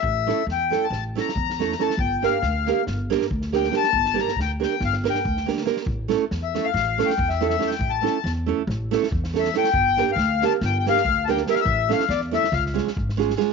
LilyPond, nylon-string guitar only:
\new Staff \with { instrumentName = "Nylon-string guitar" } { \time 9/8 \tempo 4. = 93 r8 <a cis' e' a'>8 r8 <a cis' e' a'>8 r8 <a cis' e' a'>8 r8 <a cis' e' a'>8 <a cis' e' a'>8 | r8 <bes d' g' bes'>8 r8 <bes d' g' bes'>8 r8 <bes d' g' bes'>8 r8 <bes d' g' bes'>8 <bes d' g' bes'>8 | r8 <bes d' g' bes'>8 r8 <bes d' g' bes'>8 r8 <bes d' g' bes'>8 r8 <bes d' g' bes'>8 <bes d' g' bes'>8 | r8 <a cis' e' a'>8 r8 <a cis' e' a'>8 r8 <a cis' e' a'>8 r8 <a cis' e' a'>8 <a cis' e' a'>8 |
r8 <a cis' e' a'>8 r8 <a cis' e' a'>8 r8 <a cis' e' a'>8 r8 <a cis' e' a'>8 <a cis' e' a'>8 | r8 <bes d' g' bes'>8 r8 <bes d' g' bes'>8 r8 <bes d' g' bes'>8 r8 <bes d' g' bes'>8 <bes d' g' bes'>8 | r8 <a cis' e' a'>8 r8 <a cis' e' a'>8 r8 <gis cis' eis' gis'>8 r8 <gis cis' eis' gis'>8 <gis cis' eis' gis'>8 | }